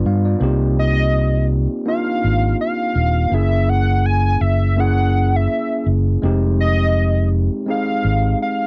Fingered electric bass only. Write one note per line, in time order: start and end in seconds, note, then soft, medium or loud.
0.06 0.34 G2 medium
0.41 1.66 C2 loud
2.24 2.53 G#1 medium
2.96 3.25 D#1 medium
3.32 4.37 F#1 medium
4.41 5.46 F#1 medium
5.86 6.15 F#1 medium
6.23 7.48 F1 loud
8.04 8.33 G#1 medium